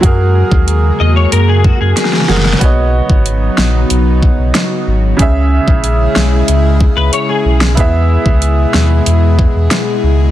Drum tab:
HH |x-------x-------x-------x-------|x-------x-------x-------x-------|x-------x-------x-------x-------|x-------x-------x-------x-------|
SD |------------------------oooooooo|------------o-----------o-------|------------o-----------------o-|------------o-----------o-------|
BD |o-----o-------------o-----------|o-----o-------------o-----------|o-----o-------------o-----------|o-----o-------------o-----------|